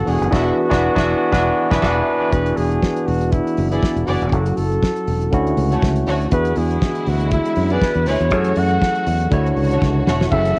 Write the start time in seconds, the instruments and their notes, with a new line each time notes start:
Already playing: tine electric piano E3 B3 D4 F#4 A4, violin section F#4 F#5, flugelhorn A4
0.06 fingered electric bass E1, tine electric piano E3 B3 D4 F#4 G#4, open hi-hat
0.10 flugelhorn G#4
0.21 fingered electric bass F#1, closed hi-hat
0.30 fingered electric bass E1, tine electric piano E3 B3 D4 F#4, violin section E4 E5, kick, snare, crash
0.35 flugelhorn F#4
0.69 fingered electric bass E1, tine electric piano E3 B3 D4 F#4, violin section E4 E5, kick, snare
0.95 fingered electric bass E1, tine electric piano E3 B3 D4 F#4 B4, violin section E4 E5, kick, snare
1.32 fingered electric bass E1, tine electric piano E3 B3 D4 F#4 B4, violin section E4 E5, kick, snare
1.70 fingered electric bass E1, tine electric piano E3 B3 D4 F#4 B4, violin section E4 E5, kick, snare
1.81 fingered electric bass E1, tine electric piano E3 B3 D4 F#4 B4, violin section E4 E5, kick, snare, crash
2.31 fingered electric bass E1, tine electric piano E3 B3 D4 F#4 G#4, flugelhorn B4, kick, closed hi-hat
2.46 closed hi-hat
2.57 fingered electric bass E1, flugelhorn G#4, open hi-hat
2.71 closed hi-hat
2.82 kick, snare
2.96 closed hi-hat
3.07 fingered electric bass E1, flugelhorn F#4, open hi-hat
3.21 closed hi-hat
3.32 flugelhorn E4, kick, closed hi-hat
3.47 closed hi-hat
3.57 fingered electric bass F#1, open hi-hat
3.70 violin section B3 G#4 D5, flugelhorn E4, closed hi-hat
3.83 kick, snare
3.96 fingered electric bass E1, closed hi-hat
4.06 fingered electric bass F#1, violin section B3 G#4 D5, flugelhorn F#4, open hi-hat
4.22 fingered electric bass E1, closed hi-hat
4.31 fingered electric bass F#1, tine electric piano F#3 C#4 E4 F#4 A4, kick, closed hi-hat
4.46 closed hi-hat
4.57 fingered electric bass F#1, flugelhorn A4, open hi-hat
4.72 closed hi-hat
4.82 kick, snare
4.96 closed hi-hat
5.07 fingered electric bass E1, open hi-hat
5.21 closed hi-hat
5.31 fingered electric bass D2, tine electric piano D3 A3 C#4 E4 F#4, kick, closed hi-hat
5.47 closed hi-hat
5.57 fingered electric bass C#2, open hi-hat
5.71 violin section A3 F#4 C#5, closed hi-hat
5.82 fingered electric bass C#2, kick, snare
5.96 closed hi-hat
6.07 fingered electric bass D2, violin section A3 F#4 C#5, snare, open hi-hat
6.21 closed hi-hat
6.31 fingered electric bass E2, string section D3 G#3 E4, tine electric piano E3 B3 D4 F#4 G#4, flugelhorn B4, kick, closed hi-hat
6.45 closed hi-hat
6.56 fingered electric bass E2, flugelhorn G#4, open hi-hat
6.71 closed hi-hat
6.82 kick, snare
6.95 closed hi-hat
7.06 fingered electric bass D2, flugelhorn F#4, open hi-hat
7.20 closed hi-hat
7.31 flugelhorn E4, kick, closed hi-hat
7.46 closed hi-hat
7.56 fingered electric bass F#2, open hi-hat
7.70 violin section B3 G#4 D5, flugelhorn B4, closed hi-hat
7.82 kick, snare
7.95 fingered electric bass E2, closed hi-hat
8.06 fingered electric bass D2, violin section G#3 E4 B4, flugelhorn C#5, snare, open hi-hat
8.21 fingered electric bass E2, closed hi-hat
8.30 fingered electric bass F#2, string section E3 A3 F#4, tine electric piano F#3 C#4 E4 G#4 A4, kick, closed hi-hat
8.44 closed hi-hat
8.56 fingered electric bass F#2, flugelhorn F#5, open hi-hat
8.70 closed hi-hat
8.82 kick, snare
8.95 closed hi-hat
9.06 fingered electric bass E2, open hi-hat
9.20 closed hi-hat
9.30 fingered electric bass D2, tine electric piano D3 D4 E4 F#4 C#5, string section D3 F#4 C#5, kick, closed hi-hat
9.46 closed hi-hat
9.56 fingered electric bass C#2, open hi-hat
9.71 violin section A3 F#4 C#5, closed hi-hat
9.82 fingered electric bass C#2, kick, snare
10.07 fingered electric bass E1, violin section A3 F#4 C#5, snare
10.21 snare
10.30 fingered electric bass F#1, string section E3 A3 F#4, tine electric piano F#3 C#4 E4 G#4 A4, violin section A3 F#4 C#5, flugelhorn E5, kick, crash
10.45 closed hi-hat